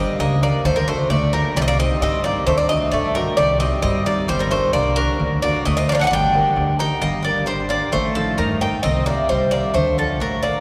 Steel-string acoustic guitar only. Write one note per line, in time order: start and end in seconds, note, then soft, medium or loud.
0.00 0.17 G3 medium
0.00 0.17 D4 soft
0.00 0.32 G4 soft
0.00 0.33 A#4 medium
0.19 0.40 D4 medium
0.41 0.60 D4 soft
0.41 0.60 G4 soft
0.41 0.60 A#4 medium
0.64 1.09 D3 medium
0.88 1.24 D4 medium
0.88 1.24 F#4 soft
0.88 1.24 A4 medium
1.10 1.55 A3 medium
1.34 1.52 D4 soft
1.34 1.52 F#4 soft
1.34 1.52 A4 medium
1.57 2.01 C3 medium
1.78 2.15 C4 soft
1.78 2.15 D#4 soft
1.78 2.15 G4 medium
2.02 2.46 G3 medium
2.25 2.43 C4 soft
2.25 2.43 D#4 soft
2.25 2.43 G4 medium
2.47 2.91 D3 medium
2.69 2.92 A3 soft
2.69 3.06 D4 soft
2.69 3.06 F#4 medium
2.93 3.14 A3 medium
3.15 3.34 A3 soft
3.15 3.34 D4 soft
3.15 3.34 F#4 medium
3.39 3.82 C3 medium
3.60 3.97 C4 medium
3.60 3.97 D#4 soft
3.60 3.97 G4 medium
3.84 4.28 G3 medium
4.06 4.24 C4 soft
4.06 4.24 D#4 soft
4.06 4.25 G4 medium
4.29 4.73 G3 medium
4.52 4.88 D4 soft
4.52 4.88 G4 soft
4.52 4.88 A#4 medium
4.75 5.19 D3 medium
4.97 5.15 D4 soft
4.97 5.16 G4 soft
4.97 5.16 A#4 medium
5.20 5.64 D3 medium
5.43 5.79 D4 soft
5.43 5.79 F#4 soft
5.43 5.80 A4 medium
5.66 6.10 A3 medium
5.88 6.06 D4 soft
5.88 6.06 F#4 soft
5.88 6.07 A4 medium
6.11 6.55 G3 medium
6.35 6.71 D4 soft
6.35 6.71 G4 soft
6.35 6.71 A#4 medium
6.56 7.00 D3 medium
6.79 6.97 D4 soft
6.79 6.98 G4 soft
6.79 6.98 A#4 medium
7.01 7.46 G3 medium
7.25 7.61 D4 soft
7.25 7.61 G4 soft
7.25 7.61 A#4 medium
7.48 7.92 D3 medium
7.70 7.88 D4 soft
7.70 7.88 G4 soft
7.70 7.88 A#4 medium
7.93 8.37 A3 medium
8.16 8.52 D#4 soft
8.16 8.52 A4 soft
8.16 8.53 C5 medium
8.39 8.83 A3 medium
8.62 8.80 D#4 soft
8.62 8.80 A4 soft
8.62 8.80 C5 soft
8.85 9.29 C4 medium
9.07 9.43 G4 soft
9.07 9.44 C5 soft
9.07 9.44 E5 medium
9.31 9.74 G3 medium
9.52 9.70 G4 soft
9.52 9.70 C5 soft
9.52 9.71 E5 soft
9.75 10.19 D4 medium
9.96 10.33 A4 soft
9.96 10.34 D5 soft
9.96 10.34 F#5 medium
10.20 10.60 A3 medium
10.42 10.60 A4 soft
10.42 10.60 D5 soft
10.42 10.60 F#5 medium